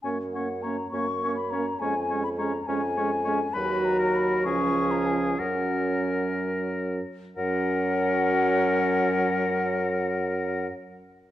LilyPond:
<<
  \new Staff \with { instrumentName = "Flute" } { \time 6/8 \key fis \major \tempo 4. = 63 gis''8 fis''8 ais''8 cis'''8. b''16 ais''8 | gis''8. b''16 ais''8 gis''4. | b''8 ais''8 b''8 cis'''8. ais''16 gis''8 | fis''4. r4. |
fis''2.~ | fis''2. | }
  \new Staff \with { instrumentName = "Oboe" } { \time 6/8 \key fis \major cis''8 cis''8 cis''8 cis''8 cis''8 cis''8 | cis''8 cis''8 cis''8 cis''8 cis''8 cis''8 | b'8. ais'8. gis'4. | ais'2~ ais'8 r8 |
ais'2.~ | ais'2. | }
  \new Staff \with { instrumentName = "Clarinet" } { \time 6/8 \key fis \major cis'8 cis'8 cis'8 cis'8 cis'8 cis'8 | cis'8 cis'8 cis'8 cis'8 cis'8 cis'8 | fis'4. cis'4. | cis'2~ cis'8 r8 |
cis'2.~ | cis'2. | }
  \new Staff \with { instrumentName = "French horn" } { \clef bass \time 6/8 \key fis \major ais8 ais8 ais8 ais8 ais8 ais8 | gis8 gis8 gis8 gis8 gis8 gis8 | fis4. eis4. | fis2~ fis8 r8 |
fis2.~ | fis2. | }
  \new Staff \with { instrumentName = "Bassoon" } { \clef bass \time 6/8 \key fis \major fis,4. fis,4. | eis,4. eis,4. | dis,4. cis,4. | fis,2~ fis,8 r8 |
fis,2.~ | fis,2. | }
>>